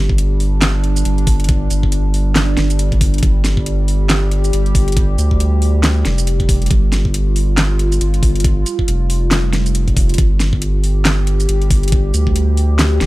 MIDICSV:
0, 0, Header, 1, 4, 480
1, 0, Start_track
1, 0, Tempo, 434783
1, 1643, Time_signature, 4, 2, 24, 8
1, 14420, End_track
2, 0, Start_track
2, 0, Title_t, "Analog synth pad"
2, 0, Program_c, 0, 89
2, 0, Note_on_c, 0, 55, 78
2, 0, Note_on_c, 0, 62, 81
2, 3562, Note_on_c, 0, 67, 80
2, 3592, Note_off_c, 0, 62, 0
2, 7403, Note_on_c, 0, 65, 80
2, 7430, Note_off_c, 0, 67, 0
2, 11230, Note_off_c, 0, 55, 0
2, 11243, Note_on_c, 0, 55, 81
2, 11243, Note_on_c, 0, 67, 82
2, 11271, Note_off_c, 0, 65, 0
2, 14420, Note_off_c, 0, 55, 0
2, 14420, Note_off_c, 0, 67, 0
2, 14420, End_track
3, 0, Start_track
3, 0, Title_t, "Sub bass"
3, 0, Program_c, 1, 38
3, 0, Note_on_c, 1, 31, 94
3, 1147, Note_off_c, 1, 31, 0
3, 1162, Note_on_c, 1, 31, 99
3, 1867, Note_off_c, 1, 31, 0
3, 1883, Note_on_c, 1, 31, 97
3, 2827, Note_off_c, 1, 31, 0
3, 2843, Note_on_c, 1, 31, 97
3, 3547, Note_off_c, 1, 31, 0
3, 3562, Note_on_c, 1, 31, 95
3, 4986, Note_off_c, 1, 31, 0
3, 5004, Note_on_c, 1, 31, 96
3, 5707, Note_off_c, 1, 31, 0
3, 5721, Note_on_c, 1, 38, 100
3, 6666, Note_off_c, 1, 38, 0
3, 6683, Note_on_c, 1, 29, 100
3, 7387, Note_off_c, 1, 29, 0
3, 7403, Note_on_c, 1, 31, 97
3, 8827, Note_off_c, 1, 31, 0
3, 8844, Note_on_c, 1, 31, 96
3, 9547, Note_off_c, 1, 31, 0
3, 9801, Note_on_c, 1, 29, 98
3, 11226, Note_off_c, 1, 29, 0
3, 11242, Note_on_c, 1, 31, 100
3, 12666, Note_off_c, 1, 31, 0
3, 12682, Note_on_c, 1, 31, 98
3, 13387, Note_off_c, 1, 31, 0
3, 13403, Note_on_c, 1, 38, 100
3, 14347, Note_off_c, 1, 38, 0
3, 14361, Note_on_c, 1, 29, 99
3, 14420, Note_off_c, 1, 29, 0
3, 14420, End_track
4, 0, Start_track
4, 0, Title_t, "Drums"
4, 104, Note_on_c, 9, 36, 66
4, 202, Note_on_c, 9, 42, 80
4, 215, Note_off_c, 9, 36, 0
4, 312, Note_off_c, 9, 42, 0
4, 443, Note_on_c, 9, 46, 59
4, 553, Note_off_c, 9, 46, 0
4, 683, Note_on_c, 9, 38, 126
4, 683, Note_on_c, 9, 39, 93
4, 683, Note_on_c, 9, 42, 77
4, 793, Note_off_c, 9, 38, 0
4, 793, Note_off_c, 9, 39, 0
4, 793, Note_off_c, 9, 42, 0
4, 923, Note_on_c, 9, 42, 50
4, 1034, Note_off_c, 9, 42, 0
4, 1064, Note_on_c, 9, 42, 36
4, 1064, Note_on_c, 9, 82, 54
4, 1162, Note_off_c, 9, 42, 0
4, 1162, Note_on_c, 9, 42, 75
4, 1175, Note_off_c, 9, 82, 0
4, 1272, Note_off_c, 9, 42, 0
4, 1304, Note_on_c, 9, 42, 36
4, 1402, Note_on_c, 9, 46, 87
4, 1403, Note_on_c, 9, 36, 110
4, 1414, Note_off_c, 9, 42, 0
4, 1512, Note_off_c, 9, 46, 0
4, 1513, Note_off_c, 9, 36, 0
4, 1542, Note_on_c, 9, 42, 49
4, 1592, Note_off_c, 9, 42, 0
4, 1592, Note_on_c, 9, 42, 62
4, 1641, Note_off_c, 9, 42, 0
4, 1641, Note_on_c, 9, 42, 71
4, 1643, Note_on_c, 9, 36, 126
4, 1752, Note_off_c, 9, 42, 0
4, 1753, Note_off_c, 9, 36, 0
4, 1882, Note_on_c, 9, 42, 50
4, 1882, Note_on_c, 9, 82, 55
4, 1992, Note_off_c, 9, 42, 0
4, 1992, Note_off_c, 9, 82, 0
4, 2024, Note_on_c, 9, 36, 63
4, 2120, Note_on_c, 9, 42, 77
4, 2135, Note_off_c, 9, 36, 0
4, 2231, Note_off_c, 9, 42, 0
4, 2361, Note_on_c, 9, 46, 61
4, 2472, Note_off_c, 9, 46, 0
4, 2602, Note_on_c, 9, 38, 121
4, 2602, Note_on_c, 9, 39, 87
4, 2602, Note_on_c, 9, 42, 75
4, 2712, Note_off_c, 9, 38, 0
4, 2712, Note_off_c, 9, 39, 0
4, 2712, Note_off_c, 9, 42, 0
4, 2841, Note_on_c, 9, 38, 64
4, 2841, Note_on_c, 9, 42, 51
4, 2951, Note_off_c, 9, 38, 0
4, 2951, Note_off_c, 9, 42, 0
4, 2983, Note_on_c, 9, 42, 35
4, 2983, Note_on_c, 9, 82, 55
4, 3082, Note_off_c, 9, 42, 0
4, 3082, Note_on_c, 9, 42, 74
4, 3093, Note_off_c, 9, 82, 0
4, 3192, Note_off_c, 9, 42, 0
4, 3223, Note_on_c, 9, 42, 35
4, 3224, Note_on_c, 9, 36, 64
4, 3322, Note_on_c, 9, 46, 89
4, 3323, Note_off_c, 9, 36, 0
4, 3323, Note_on_c, 9, 36, 107
4, 3334, Note_off_c, 9, 42, 0
4, 3433, Note_off_c, 9, 36, 0
4, 3433, Note_off_c, 9, 46, 0
4, 3465, Note_on_c, 9, 42, 47
4, 3513, Note_off_c, 9, 42, 0
4, 3513, Note_on_c, 9, 42, 62
4, 3563, Note_off_c, 9, 42, 0
4, 3563, Note_on_c, 9, 36, 121
4, 3563, Note_on_c, 9, 42, 73
4, 3673, Note_off_c, 9, 36, 0
4, 3673, Note_off_c, 9, 42, 0
4, 3803, Note_on_c, 9, 38, 62
4, 3803, Note_on_c, 9, 42, 50
4, 3803, Note_on_c, 9, 82, 56
4, 3913, Note_off_c, 9, 38, 0
4, 3913, Note_off_c, 9, 42, 0
4, 3913, Note_off_c, 9, 82, 0
4, 3944, Note_on_c, 9, 36, 63
4, 4044, Note_on_c, 9, 42, 74
4, 4054, Note_off_c, 9, 36, 0
4, 4154, Note_off_c, 9, 42, 0
4, 4284, Note_on_c, 9, 46, 62
4, 4394, Note_off_c, 9, 46, 0
4, 4523, Note_on_c, 9, 38, 118
4, 4523, Note_on_c, 9, 39, 87
4, 4523, Note_on_c, 9, 42, 77
4, 4633, Note_off_c, 9, 38, 0
4, 4633, Note_off_c, 9, 39, 0
4, 4633, Note_off_c, 9, 42, 0
4, 4764, Note_on_c, 9, 42, 51
4, 4874, Note_off_c, 9, 42, 0
4, 4905, Note_on_c, 9, 42, 35
4, 4905, Note_on_c, 9, 82, 54
4, 5004, Note_off_c, 9, 42, 0
4, 5004, Note_on_c, 9, 42, 75
4, 5015, Note_off_c, 9, 82, 0
4, 5114, Note_off_c, 9, 42, 0
4, 5145, Note_on_c, 9, 42, 35
4, 5243, Note_on_c, 9, 36, 107
4, 5244, Note_on_c, 9, 46, 94
4, 5256, Note_off_c, 9, 42, 0
4, 5353, Note_off_c, 9, 36, 0
4, 5355, Note_off_c, 9, 46, 0
4, 5385, Note_on_c, 9, 42, 47
4, 5434, Note_off_c, 9, 42, 0
4, 5434, Note_on_c, 9, 42, 62
4, 5483, Note_on_c, 9, 36, 117
4, 5484, Note_off_c, 9, 42, 0
4, 5484, Note_on_c, 9, 42, 77
4, 5593, Note_off_c, 9, 36, 0
4, 5594, Note_off_c, 9, 42, 0
4, 5723, Note_on_c, 9, 42, 52
4, 5723, Note_on_c, 9, 82, 54
4, 5834, Note_off_c, 9, 42, 0
4, 5834, Note_off_c, 9, 82, 0
4, 5864, Note_on_c, 9, 36, 59
4, 5964, Note_on_c, 9, 42, 80
4, 5975, Note_off_c, 9, 36, 0
4, 6074, Note_off_c, 9, 42, 0
4, 6203, Note_on_c, 9, 46, 65
4, 6313, Note_off_c, 9, 46, 0
4, 6443, Note_on_c, 9, 38, 118
4, 6443, Note_on_c, 9, 39, 87
4, 6443, Note_on_c, 9, 42, 80
4, 6553, Note_off_c, 9, 38, 0
4, 6553, Note_off_c, 9, 39, 0
4, 6553, Note_off_c, 9, 42, 0
4, 6683, Note_on_c, 9, 38, 59
4, 6683, Note_on_c, 9, 42, 52
4, 6794, Note_off_c, 9, 38, 0
4, 6794, Note_off_c, 9, 42, 0
4, 6824, Note_on_c, 9, 42, 37
4, 6824, Note_on_c, 9, 82, 53
4, 6924, Note_off_c, 9, 42, 0
4, 6924, Note_on_c, 9, 42, 77
4, 6935, Note_off_c, 9, 82, 0
4, 7034, Note_off_c, 9, 42, 0
4, 7064, Note_on_c, 9, 36, 60
4, 7066, Note_on_c, 9, 42, 37
4, 7163, Note_off_c, 9, 36, 0
4, 7163, Note_on_c, 9, 36, 104
4, 7164, Note_on_c, 9, 46, 93
4, 7176, Note_off_c, 9, 42, 0
4, 7273, Note_off_c, 9, 36, 0
4, 7275, Note_off_c, 9, 46, 0
4, 7305, Note_on_c, 9, 42, 49
4, 7355, Note_off_c, 9, 42, 0
4, 7355, Note_on_c, 9, 42, 64
4, 7403, Note_on_c, 9, 36, 116
4, 7405, Note_off_c, 9, 42, 0
4, 7405, Note_on_c, 9, 42, 77
4, 7513, Note_off_c, 9, 36, 0
4, 7515, Note_off_c, 9, 42, 0
4, 7644, Note_on_c, 9, 38, 59
4, 7644, Note_on_c, 9, 42, 56
4, 7644, Note_on_c, 9, 82, 51
4, 7755, Note_off_c, 9, 38, 0
4, 7755, Note_off_c, 9, 42, 0
4, 7755, Note_off_c, 9, 82, 0
4, 7784, Note_on_c, 9, 36, 59
4, 7884, Note_on_c, 9, 42, 84
4, 7895, Note_off_c, 9, 36, 0
4, 7994, Note_off_c, 9, 42, 0
4, 8124, Note_on_c, 9, 46, 64
4, 8234, Note_off_c, 9, 46, 0
4, 8364, Note_on_c, 9, 38, 116
4, 8364, Note_on_c, 9, 39, 88
4, 8364, Note_on_c, 9, 42, 82
4, 8475, Note_off_c, 9, 38, 0
4, 8475, Note_off_c, 9, 39, 0
4, 8475, Note_off_c, 9, 42, 0
4, 8604, Note_on_c, 9, 42, 54
4, 8714, Note_off_c, 9, 42, 0
4, 8745, Note_on_c, 9, 42, 38
4, 8745, Note_on_c, 9, 82, 52
4, 8843, Note_off_c, 9, 42, 0
4, 8843, Note_on_c, 9, 42, 80
4, 8856, Note_off_c, 9, 82, 0
4, 8954, Note_off_c, 9, 42, 0
4, 8985, Note_on_c, 9, 42, 37
4, 9083, Note_on_c, 9, 36, 102
4, 9084, Note_on_c, 9, 46, 99
4, 9095, Note_off_c, 9, 42, 0
4, 9193, Note_off_c, 9, 36, 0
4, 9195, Note_off_c, 9, 46, 0
4, 9224, Note_on_c, 9, 42, 51
4, 9274, Note_off_c, 9, 42, 0
4, 9274, Note_on_c, 9, 42, 65
4, 9323, Note_off_c, 9, 42, 0
4, 9323, Note_on_c, 9, 36, 117
4, 9323, Note_on_c, 9, 42, 82
4, 9433, Note_off_c, 9, 36, 0
4, 9433, Note_off_c, 9, 42, 0
4, 9563, Note_on_c, 9, 42, 57
4, 9563, Note_on_c, 9, 82, 50
4, 9673, Note_off_c, 9, 42, 0
4, 9673, Note_off_c, 9, 82, 0
4, 9704, Note_on_c, 9, 36, 59
4, 9803, Note_on_c, 9, 42, 83
4, 9814, Note_off_c, 9, 36, 0
4, 9914, Note_off_c, 9, 42, 0
4, 10044, Note_on_c, 9, 46, 66
4, 10155, Note_off_c, 9, 46, 0
4, 10282, Note_on_c, 9, 38, 115
4, 10282, Note_on_c, 9, 39, 91
4, 10282, Note_on_c, 9, 42, 82
4, 10393, Note_off_c, 9, 38, 0
4, 10393, Note_off_c, 9, 39, 0
4, 10393, Note_off_c, 9, 42, 0
4, 10523, Note_on_c, 9, 38, 59
4, 10523, Note_on_c, 9, 42, 54
4, 10634, Note_off_c, 9, 38, 0
4, 10634, Note_off_c, 9, 42, 0
4, 10665, Note_on_c, 9, 42, 39
4, 10665, Note_on_c, 9, 82, 50
4, 10762, Note_off_c, 9, 42, 0
4, 10762, Note_on_c, 9, 42, 84
4, 10775, Note_off_c, 9, 82, 0
4, 10873, Note_off_c, 9, 42, 0
4, 10903, Note_on_c, 9, 36, 59
4, 10905, Note_on_c, 9, 42, 39
4, 11002, Note_off_c, 9, 36, 0
4, 11002, Note_on_c, 9, 36, 105
4, 11003, Note_on_c, 9, 46, 96
4, 11015, Note_off_c, 9, 42, 0
4, 11113, Note_off_c, 9, 36, 0
4, 11113, Note_off_c, 9, 46, 0
4, 11144, Note_on_c, 9, 42, 52
4, 11193, Note_off_c, 9, 42, 0
4, 11193, Note_on_c, 9, 42, 69
4, 11242, Note_off_c, 9, 42, 0
4, 11242, Note_on_c, 9, 36, 123
4, 11242, Note_on_c, 9, 42, 79
4, 11352, Note_off_c, 9, 42, 0
4, 11353, Note_off_c, 9, 36, 0
4, 11482, Note_on_c, 9, 38, 62
4, 11482, Note_on_c, 9, 42, 56
4, 11482, Note_on_c, 9, 82, 51
4, 11592, Note_off_c, 9, 38, 0
4, 11592, Note_off_c, 9, 42, 0
4, 11592, Note_off_c, 9, 82, 0
4, 11623, Note_on_c, 9, 36, 60
4, 11721, Note_on_c, 9, 42, 82
4, 11734, Note_off_c, 9, 36, 0
4, 11832, Note_off_c, 9, 42, 0
4, 11963, Note_on_c, 9, 46, 63
4, 12073, Note_off_c, 9, 46, 0
4, 12203, Note_on_c, 9, 38, 122
4, 12203, Note_on_c, 9, 39, 93
4, 12203, Note_on_c, 9, 42, 85
4, 12313, Note_off_c, 9, 38, 0
4, 12313, Note_off_c, 9, 39, 0
4, 12313, Note_off_c, 9, 42, 0
4, 12443, Note_on_c, 9, 42, 57
4, 12553, Note_off_c, 9, 42, 0
4, 12584, Note_on_c, 9, 42, 38
4, 12584, Note_on_c, 9, 82, 51
4, 12683, Note_off_c, 9, 42, 0
4, 12683, Note_on_c, 9, 42, 84
4, 12695, Note_off_c, 9, 82, 0
4, 12793, Note_off_c, 9, 42, 0
4, 12824, Note_on_c, 9, 42, 39
4, 12923, Note_on_c, 9, 36, 108
4, 12923, Note_on_c, 9, 46, 91
4, 12934, Note_off_c, 9, 42, 0
4, 13033, Note_off_c, 9, 36, 0
4, 13033, Note_off_c, 9, 46, 0
4, 13064, Note_on_c, 9, 42, 52
4, 13113, Note_off_c, 9, 42, 0
4, 13113, Note_on_c, 9, 42, 67
4, 13162, Note_off_c, 9, 42, 0
4, 13162, Note_on_c, 9, 42, 77
4, 13163, Note_on_c, 9, 36, 127
4, 13273, Note_off_c, 9, 36, 0
4, 13273, Note_off_c, 9, 42, 0
4, 13402, Note_on_c, 9, 42, 53
4, 13402, Note_on_c, 9, 82, 53
4, 13512, Note_off_c, 9, 42, 0
4, 13512, Note_off_c, 9, 82, 0
4, 13544, Note_on_c, 9, 36, 65
4, 13641, Note_on_c, 9, 42, 82
4, 13654, Note_off_c, 9, 36, 0
4, 13752, Note_off_c, 9, 42, 0
4, 13881, Note_on_c, 9, 46, 62
4, 13992, Note_off_c, 9, 46, 0
4, 14122, Note_on_c, 9, 38, 123
4, 14122, Note_on_c, 9, 39, 95
4, 14122, Note_on_c, 9, 42, 79
4, 14232, Note_off_c, 9, 38, 0
4, 14232, Note_off_c, 9, 39, 0
4, 14232, Note_off_c, 9, 42, 0
4, 14362, Note_on_c, 9, 38, 66
4, 14362, Note_on_c, 9, 42, 54
4, 14420, Note_off_c, 9, 38, 0
4, 14420, Note_off_c, 9, 42, 0
4, 14420, End_track
0, 0, End_of_file